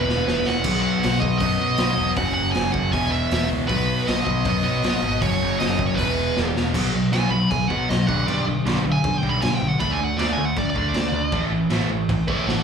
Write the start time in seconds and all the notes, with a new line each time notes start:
Already playing: E1 E2 B2 E3 B4
0.09 snare
0.28 E1, snare
0.47 E1 F#5, snare
0.64 B1 B2 F#3 B3, kick, crash
0.82 F#5
1.03 B1, snare, open hi-hat
1.20 B1 D#5, kick
1.39 F#2 B2 F#3 D#5, kick, open hi-hat
1.43 B3
1.59 B1 B2 F#3 B3
1.77 B1 B2 F#3 B3, snare, open hi-hat
1.97 E1
2.16 F#1 F#2 C#3 F#3 F#5, kick, open hi-hat
2.34 F#1 F#5
2.52 G#5, snare, open hi-hat
2.56 F#1
2.72 F#1 F#5, kick
2.92 E1 E2 G#5, kick, open hi-hat
2.96 B2 E3
3.12 E5
3.31 E1, snare, open hi-hat
3.52 C#2
3.68 B1 B2 F#3 B3 B4, kick, open hi-hat
4.07 B1 D#5, snare, open hi-hat
4.25 B1 D#5, kick
4.45 F#2 B2 F#3 B3, kick, open hi-hat
4.64 B1 F#3 B3 D#5
4.68 B2
4.83 B1 B2 F#3 B3, snare, open hi-hat
5.03 G#1
5.21 F#1 F#2 C#3 F#3 C#5, kick, open hi-hat
5.42 F#1
5.59 F#1 D#5, snare, open hi-hat
5.79 F#1, kick
5.87 C#5
5.95 E1 E2 B4, kick, open hi-hat
5.99 B2 E3
6.37 E1, snare
6.55 E1, snare
6.74 B1 B2 F#3 B3, kick, crash
6.93 B1 B2 F#3
7.12 B1 B2 F#3 B3 G#5, snare, crash
7.31 B1 B2 F#3 B5
7.50 B1 B2 F#3 G#5, kick, crash
7.68 B1 B2 F#3 B3 F#5, kick
7.89 B1 B2 F#3 D#5, snare, crash
8.07 B1 G2 D3 G3 F#5, kick
8.27 B1 G2 D3 G3 D5, crash
8.47 B1 G2 D3
8.66 B1 G2 D3 G3, snare, crash
8.85 B1 G2 D3
8.92 G#5
9.04 B1 G2 D3, kick, crash
9.18 G5
9.22 B1 G2 D3 G3, kick
9.29 B5
9.41 B1 G2 D3 G#5, snare, crash
9.55 G5
9.61 B1 G2 D3
9.68 F#5
9.80 D2 D3 A3 D4 B5, kick, crash
9.91 G#5
9.99 D2 D3 A3
10.04 F#5
10.18 D2 D3 A3 D4 D5, snare, crash
10.33 G#5
10.38 D2 D3 A3
10.45 F#5
10.56 D2 D3 A3 D5, kick, crash
10.70 D5
10.75 D2 D3 A3 D4, kick
10.94 D2 D3 A3, snare, crash
11.13 D2 D3 A3
11.32 A1 A2 E3 A3, kick, crash
11.50 A1 A2 E3
11.70 A1 A2 E3 A3, snare, crash
11.88 A1 A2 E3
12.09 A1 A2 E3, kick, crash
12.28 A1 A2 E3 A3 C#5 E5, kick
12.46 A1 A2 E3 A4 F#5, snare